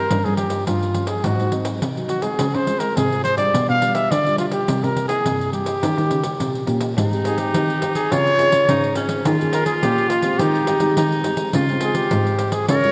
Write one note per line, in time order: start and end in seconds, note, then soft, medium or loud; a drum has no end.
0.00 0.26 A#4 medium
0.10 0.65 G2 soft
0.10 0.22 G2 medium
0.10 0.19 F3 medium
0.10 0.19 A#3 medium
0.10 0.19 C#4 medium
0.10 pandeiro medium
0.25 0.62 G2 medium
0.25 0.64 F3 medium
0.25 0.64 A#3 medium
0.25 0.64 C#4 medium
0.25 0.36 G#4 medium
0.25 pandeiro soft
0.36 0.64 G4 medium
0.36 pandeiro medium
0.50 pandeiro medium
0.66 1.22 G2 soft
0.66 1.16 G2 medium
0.66 0.85 F3 soft
0.66 0.85 A#3 medium
0.66 0.85 C#4 medium
0.66 1.09 F4 medium
0.66 pandeiro medium
0.83 pandeiro soft
0.94 1.20 F3 soft
0.94 1.20 A#3 soft
0.94 1.20 C#4 medium
0.94 pandeiro medium
1.07 1.26 G#4 medium
1.07 pandeiro medium
1.24 1.79 G#2 medium
1.24 1.37 G#2 medium
1.24 1.42 F#3 medium
1.24 1.42 C4 medium
1.24 1.42 D#4 medium
1.24 1.53 F#4 medium
1.24 pandeiro medium
1.40 1.76 G#2 medium
1.40 pandeiro soft
1.52 1.79 F#3 medium
1.52 1.80 C4 medium
1.52 1.80 D#4 medium
1.52 pandeiro medium
1.65 pandeiro medium
1.82 2.31 C3 medium
1.82 2.37 D#3 medium
1.82 pandeiro medium
1.97 2.21 F#3 medium
1.97 2.21 C4 medium
1.97 2.21 D#4 medium
1.97 pandeiro soft
2.09 2.24 F#4 medium
2.09 pandeiro medium
2.22 2.48 G#3 medium
2.22 2.48 C4 medium
2.22 2.48 F4 medium
2.22 2.56 G#4 medium
2.22 pandeiro medium
2.39 2.94 C#3 medium
2.39 2.52 C#3 medium
2.39 pandeiro medium
2.54 2.91 C#3 medium
2.54 2.81 C5 medium
2.54 pandeiro soft
2.67 3.06 G#3 medium
2.67 3.06 C4 medium
2.67 3.06 F4 medium
2.67 pandeiro medium
2.80 2.98 A#4 medium
2.80 pandeiro medium
2.97 3.51 G#2 medium
2.97 3.45 C3 medium
2.97 3.23 G#4 medium
2.97 pandeiro medium
3.12 3.36 G#3 medium
3.12 3.36 C4 medium
3.12 3.36 F4 medium
3.12 pandeiro soft
3.24 3.37 C5 loud
3.24 pandeiro medium
3.37 3.77 G3 medium
3.37 3.77 D4 medium
3.37 3.77 F4 medium
3.37 3.65 D5 medium
3.37 pandeiro medium
3.54 3.66 B2 medium
3.54 4.08 B2 medium
3.54 pandeiro medium
3.69 4.05 B2 medium
3.69 3.96 F5 loud
3.69 pandeiro soft
3.81 4.09 G3 medium
3.81 4.09 D4 medium
3.81 4.09 F4 medium
3.81 pandeiro medium
3.95 4.13 E5 medium
3.95 pandeiro medium
4.11 4.66 B2 medium
4.11 4.60 D3 medium
4.11 4.39 D5 loud
4.11 pandeiro medium
4.26 4.64 G3 medium
4.26 4.65 D4 medium
4.26 4.65 F4 medium
4.26 pandeiro soft
4.38 4.46 F4 medium
4.38 pandeiro medium
4.52 4.85 G4 medium
4.52 pandeiro medium
4.68 5.23 C3 medium
4.68 4.81 C3 loud
4.68 5.07 G3 medium
4.68 5.07 A#3 medium
4.68 5.07 E4 medium
4.68 pandeiro medium
4.84 5.20 C3 medium
4.84 5.08 A#4 medium
4.84 pandeiro soft
4.97 pandeiro medium
5.08 5.49 A#3 medium
5.08 5.49 E4 medium
5.08 5.50 G#4 medium
5.08 pandeiro medium
5.25 5.80 G2 soft
5.25 5.74 C3 medium
5.25 pandeiro medium
5.41 pandeiro soft
5.53 5.71 G3 medium
5.53 5.71 A#3 soft
5.53 5.71 E4 medium
5.53 6.64 G4 medium
5.53 pandeiro medium
5.66 pandeiro medium
5.83 6.37 D#3 medium
5.83 5.95 D#3 medium
5.83 6.21 A#3 medium
5.83 6.21 C#4 medium
5.83 6.22 G4 medium
5.83 pandeiro medium
5.98 6.10 D#3 medium
5.98 pandeiro soft
6.11 6.37 C#3 medium
6.11 pandeiro medium
6.23 6.63 A#3 medium
6.23 6.63 C#4 medium
6.23 6.63 G4 medium
6.23 pandeiro medium
6.40 6.94 A#2 medium
6.40 6.66 C3 medium
6.40 pandeiro medium
6.55 pandeiro soft
6.67 6.94 A#2 medium
6.67 6.92 A#3 medium
6.67 6.92 C#4 medium
6.67 6.93 G4 medium
6.67 pandeiro medium
6.81 pandeiro medium
6.97 7.46 G#2 loud
6.97 7.52 G#3 medium
6.97 7.07 C4 medium
6.97 8.14 D#4 loud
6.97 7.07 D#4 medium
6.97 7.07 G4 medium
6.97 pandeiro medium
7.12 7.50 C4 medium
7.12 7.51 D#4 medium
7.12 7.51 G4 medium
7.12 pandeiro soft
7.25 7.40 G#4 medium
7.25 pandeiro medium
7.38 7.94 G4 medium
7.38 pandeiro medium
7.54 8.03 D#3 medium
7.54 8.09 D#3 medium
7.54 7.79 C4 medium
7.54 7.79 D#4 soft
7.54 7.80 G4 medium
7.54 pandeiro medium
7.70 pandeiro soft
7.82 7.99 C4 medium
7.82 8.00 D#4 medium
7.82 8.00 G4 medium
7.82 pandeiro medium
7.95 8.13 G#4 medium
7.95 pandeiro medium
8.12 8.48 C#3 medium
8.12 8.67 C#3 medium
8.12 8.29 C4 medium
8.12 8.68 F4 loud
8.12 8.29 F4 medium
8.12 8.29 G#4 medium
8.12 8.98 C#5 loud
8.12 pandeiro medium
8.27 pandeiro soft
8.39 8.50 C4 medium
8.39 8.50 F4 medium
8.39 8.50 G#4 medium
8.39 pandeiro medium
8.52 8.65 C#3 medium
8.52 8.92 F4 medium
8.52 8.92 G#4 medium
8.52 pandeiro medium
8.69 9.24 G#2 medium
8.69 9.18 C#3 medium
8.69 8.96 D#4 medium
8.69 pandeiro medium
8.84 pandeiro soft
8.95 9.21 C4 medium
8.95 9.28 C#4 medium
8.95 9.21 F4 medium
8.95 9.21 G#4 medium
8.95 pandeiro medium
9.09 pandeiro medium
9.25 9.80 D#3 medium
9.25 9.75 D#3 loud
9.25 9.36 A#3 soft
9.25 9.36 C#4 medium
9.25 10.42 F4 loud
9.25 9.36 G#4 medium
9.25 pandeiro medium
9.41 9.79 A#3 medium
9.41 9.79 C#4 medium
9.41 9.79 G#4 medium
9.41 pandeiro soft
9.53 9.65 A#4 medium
9.53 pandeiro medium
9.66 9.73 G#4 medium
9.66 pandeiro medium
9.82 10.38 A#2 medium
9.82 10.32 A#2 medium
9.82 10.10 A#3 medium
9.82 10.10 C#4 medium
9.82 10.10 G4 medium
9.82 10.11 G#4 medium
9.82 pandeiro medium
9.98 pandeiro soft
10.09 10.40 F4 loud
10.09 pandeiro medium
10.22 10.63 G#3 medium
10.22 10.63 C4 medium
10.22 10.63 G4 medium
10.22 pandeiro medium
10.39 10.77 D#3 medium
10.39 10.95 D#3 medium
10.39 10.96 D#4 medium
10.39 11.25 G4 medium
10.39 pandeiro medium
10.55 pandeiro soft
10.67 10.78 G#3 medium
10.67 10.79 C4 medium
10.67 10.79 G4 medium
10.67 pandeiro medium
10.80 10.94 D#3 medium
10.80 11.20 G#3 medium
10.80 11.20 C4 medium
10.80 11.21 G4 medium
10.80 pandeiro medium
10.97 11.52 D#3 medium
10.97 11.46 D#3 loud
10.97 11.56 D#4 loud
10.97 pandeiro medium
11.12 pandeiro soft
11.24 11.52 G#3 medium
11.24 11.52 C4 medium
11.24 11.52 G4 medium
11.24 pandeiro medium
11.37 pandeiro medium
11.53 12.09 C#3 medium
11.53 12.03 C#3 loud
11.53 11.64 G#3 medium
11.53 11.64 C4 medium
11.53 12.42 F4 medium
11.53 11.65 F4 medium
11.53 pandeiro medium
11.69 12.07 G#3 medium
11.69 12.08 C4 medium
11.69 12.08 F4 medium
11.69 pandeiro soft
11.81 11.97 G#4 medium
11.81 pandeiro medium
11.95 12.55 G4 medium
11.95 pandeiro medium
12.11 12.66 G#2 medium
12.11 12.60 G#2 medium
12.11 12.64 G#3 soft
12.11 12.64 C4 soft
12.11 12.64 F4 medium
12.11 pandeiro medium
12.27 pandeiro soft
12.39 pandeiro medium
12.52 12.68 G#4 medium
12.52 pandeiro medium
12.68 12.92 C#3 medium
12.68 12.77 G#3 medium
12.68 12.78 D#4 medium
12.68 12.78 F4 medium
12.68 12.92 A#4 loud
12.68 12.92 C#5 loud
12.68 pandeiro medium
12.83 12.92 G#3 medium
12.83 12.92 D#4 medium
12.83 12.92 F4 medium
12.83 pandeiro soft